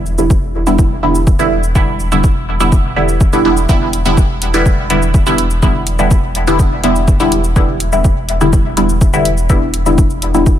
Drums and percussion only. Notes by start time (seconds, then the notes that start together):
0.06 shaker
0.18 shaker
0.30 kick, shaker
0.67 shaker
0.79 kick, shaker
1.15 shaker
1.27 kick, shaker
1.39 shaker
1.63 shaker
1.75 kick, shaker
2.00 shaker
2.12 shaker
2.24 kick, shaker
2.60 shaker
2.72 kick, shaker
3.09 shaker
3.21 kick, shaker
3.33 shaker
3.57 shaker
3.69 kick, shaker
3.93 closed hi-hat, shaker
4.05 shaker
4.17 kick, shaker
4.42 closed hi-hat
4.54 shaker
4.66 kick, shaker
4.90 closed hi-hat
5.02 shaker
5.14 kick, shaker
5.26 shaker
5.38 closed hi-hat
5.51 shaker
5.62 kick, shaker
5.87 closed hi-hat, shaker
5.99 shaker
6.11 kick, shaker
6.35 closed hi-hat
6.47 shaker
6.59 kick, shaker
6.84 closed hi-hat
6.96 shaker
7.08 kick, shaker
7.20 shaker
7.32 closed hi-hat
7.44 shaker
7.56 kick, shaker
7.80 closed hi-hat, shaker
7.92 shaker
8.04 kick, shaker
8.29 closed hi-hat
8.41 shaker
8.53 kick, shaker
8.77 closed hi-hat
8.89 shaker
9.01 kick, shaker
9.13 shaker
9.25 closed hi-hat
9.37 shaker
9.49 kick, shaker
9.74 closed hi-hat, shaker
9.86 shaker
9.98 kick, shaker
10.10 shaker
10.22 closed hi-hat
10.34 shaker
10.46 kick, shaker